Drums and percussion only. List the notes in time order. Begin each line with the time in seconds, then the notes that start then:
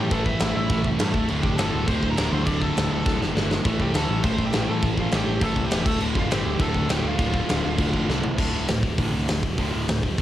0.11 kick, crash
0.26 kick
0.40 snare, crash
0.69 kick, crash
0.84 kick
0.99 snare, crash
1.14 kick
1.28 crash
1.43 kick
1.58 snare, crash
1.88 kick, crash
2.03 kick
2.17 snare, crash
2.47 kick, crash
2.62 kick
2.77 snare, crash
3.06 kick, snare
3.22 snare
3.37 snare
3.51 snare
3.65 kick, crash
3.80 kick
3.94 snare, crash
4.23 kick, crash
4.38 kick
4.53 snare, crash
4.82 kick, crash
4.98 kick
5.12 snare, crash
5.41 kick, crash
5.56 kick
5.71 snare, crash
5.86 kick, crash
6.00 crash
6.15 kick
6.31 snare, crash
6.60 kick, crash
6.74 kick
6.89 snare, crash
7.19 kick, crash
7.34 kick
7.49 snare, crash
7.78 kick, crash
7.93 kick
8.10 snare
8.24 floor tom
8.38 kick, crash
8.68 snare, open hi-hat
8.83 kick
8.98 kick, open hi-hat
9.28 snare, open hi-hat
9.43 kick
9.58 kick, open hi-hat
9.88 snare, open hi-hat
10.03 kick
10.18 kick, open hi-hat